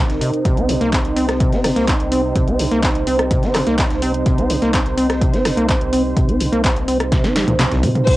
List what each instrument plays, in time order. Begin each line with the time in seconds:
Already playing: analog synth pad C3 C4 D#4 A#4
0.10 sub bass A#1, snare, closed hi-hat
0.21 acid bass C3, closed hi-hat, open hi-hat
0.33 closed hi-hat
0.45 sub bass C2, acid bass C3, analog synth pad C5, kick, closed hi-hat
0.57 acid bass C4, closed hi-hat
0.69 acid bass C3, closed hi-hat, open hi-hat
0.81 sub bass C2, acid bass A#3, closed hi-hat
0.93 acid bass C4, kick, snare, clap, closed hi-hat
1.05 closed hi-hat
1.16 sub bass C2, acid bass C4, closed hi-hat, open hi-hat
1.29 cross-stick, snare, closed hi-hat
1.40 acid bass C3, kick, closed hi-hat
1.52 sub bass G1, acid bass C4, snare, closed hi-hat
1.64 acid bass C3, cross-stick, open hi-hat
1.76 sub bass C2, acid bass A#3, closed hi-hat
1.88 acid bass C4, kick, snare, clap, closed hi-hat
2.00 sub bass C2, closed hi-hat
2.12 acid bass C4, closed hi-hat, open hi-hat
2.36 sub bass C2, acid bass C3, kick, closed hi-hat
2.48 acid bass C4, closed hi-hat
2.59 acid bass C3, closed hi-hat, open hi-hat
2.71 sub bass C2, acid bass A#3, closed hi-hat
2.83 acid bass C4, kick, snare, clap, closed hi-hat
2.95 closed hi-hat
3.07 sub bass C2, acid bass C4, closed hi-hat, open hi-hat
3.19 cross-stick, closed hi-hat
3.31 acid bass C3, kick, closed hi-hat
3.43 sub bass G1, acid bass C4, snare, closed hi-hat
3.55 acid bass C3, cross-stick, clap, closed hi-hat, open hi-hat
3.67 sub bass C2, acid bass A#3, closed hi-hat
3.78 acid bass C4, kick, snare, clap, closed hi-hat
3.90 sub bass C2, snare, closed hi-hat
4.02 acid bass C4, closed hi-hat, open hi-hat
4.14 closed hi-hat
4.26 sub bass C2, acid bass C3, kick, closed hi-hat
4.38 acid bass C4, closed hi-hat
4.50 acid bass C3, closed hi-hat, open hi-hat
4.62 sub bass C2, acid bass A#3, closed hi-hat
4.74 acid bass C4, kick, snare, clap, closed hi-hat
4.86 closed hi-hat
4.97 sub bass C2, acid bass C4, closed hi-hat, open hi-hat
5.10 cross-stick, snare, closed hi-hat
5.21 acid bass C3, kick, closed hi-hat
5.33 sub bass G1, acid bass C4, snare, closed hi-hat
5.45 acid bass C3, cross-stick, snare, closed hi-hat, open hi-hat
5.57 sub bass C2, acid bass A#3, closed hi-hat
5.69 acid bass C4, kick, snare, clap, closed hi-hat
5.81 sub bass C2, closed hi-hat
5.93 acid bass C4, closed hi-hat, open hi-hat
6.17 sub bass C2, acid bass C3, kick, closed hi-hat
6.29 acid bass C4, closed hi-hat
6.40 acid bass C3, closed hi-hat, open hi-hat
6.52 sub bass C2, acid bass A#3, closed hi-hat
6.64 acid bass C4, kick, snare, clap, closed hi-hat
6.76 closed hi-hat
6.88 sub bass C2, acid bass C4, closed hi-hat, open hi-hat
7.00 cross-stick, closed hi-hat
7.12 acid bass C3, kick, snare, closed hi-hat
7.24 sub bass G1, acid bass C4, snare, closed hi-hat
7.35 acid bass G3, snare, closed hi-hat, open hi-hat
7.47 sub bass C2, acid bass A#2, closed hi-hat, mid tom
7.59 acid bass C3, snare, clap, closed hi-hat
7.71 sub bass A#1, acid bass C2, snare, closed hi-hat
7.83 acid bass C3, closed hi-hat, mid tom, open hi-hat
7.95 closed hi-hat, mid tom
8.07 sub bass C2, acid bass C3, analog synth pad C3 C4 D#4 A#4, string section C5, kick, closed hi-hat, crash, shaker